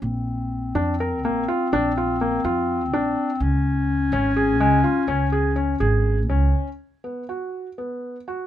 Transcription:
X:1
M:7/8
L:1/8
Q:1/4=124
K:C#phr
V:1 name="Felt piano"
z3 D ^A ^A, ^E | D ^E ^A, E2 D2 | z3 C G G, ^E | C G C G2 C2 |
z B, F2 B,2 F |]
V:2 name="Clarinet"
^B,6- B,- | ^B,6- B, | C6- C- | C6 z |
z6 z |]
V:3 name="Upright bass" clef=bass
^A,,,3 ^E,,2 A,,, z | ^A,,,3 ^E,,2 A,,, z | C,,3 G,,,2 C,, z | C,,3 G,,,2 C,, z |
z6 z |]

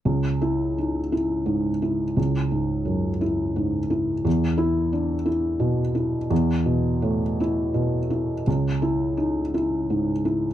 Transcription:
X:1
M:6/8
L:1/8
Q:3/8=57
K:C#m
V:1 name="Felt piano"
z E2 z3 | z6 | z E2 z3 | z6 |
z E2 z3 |]
V:2 name="Felt piano" clef=bass
C,,2 D E G,, E | C,, G,, F,, E G,, E | E,,2 =D E B,, E | E,, B,, A,, E B,, E |
C,,2 D E G,, E |]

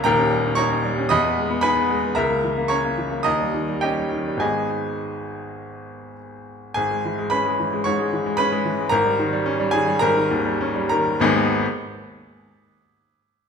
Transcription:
X:1
M:4/4
L:1/16
Q:1/4=107
K:G#m
V:1 name="Grand piano"
[A=ga]4 [cac']4 [dbd']4 [B^gb]4 | [Aea]4 [cac']4 [dad']4 [=Gd=g]4 | [Gdg]12 z4 | [Gg]4 [Bb]4 [cc']4 [Bb]4 |
[Aa]6 [Gg]2 [Aa]6 [Aa]2 | [G,,,D,,G,B,DGb]2 z12 z2 |]
V:2 name="Grand piano" clef=bass
[D,,,D,,] C =G, C D C G, C E,, B, ^G, B, D B, G, B, | C,, A, E, A, C A, E, A, D,, =G, D, G, C G, D, G, | [G,,,D,G,B,]16 | G,,, G, E, G, C G, E, G, G,, G, E, G, C G, E, G, |
G,,, =G, D, G, C G, D, G, ^G,,, D, D,, =G, C G, D, G, | z16 |]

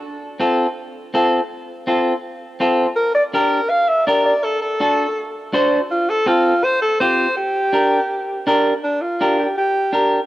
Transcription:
X:1
M:4/4
L:1/8
Q:1/4=164
K:Gm
V:1 name="Alto saxophone"
z8 | z8 | B d B2 f =e d d | A A4 z3 |
F A F2 c A c2 | G6 z2 | D F2 G G2 z2 |]
V:2 name="Clean electric guitar"
z2 [CFA] z3 [CFA] z | z2 [CFA] z3 [CFA] z | z2 [DGB] z3 [DGB] z | z2 [D^FA] z3 [DFc] z |
z2 [CFA] z3 [CFG] z | z2 [DGB] z3 [DGB] z | z2 [DGB] z3 [DGB] z |]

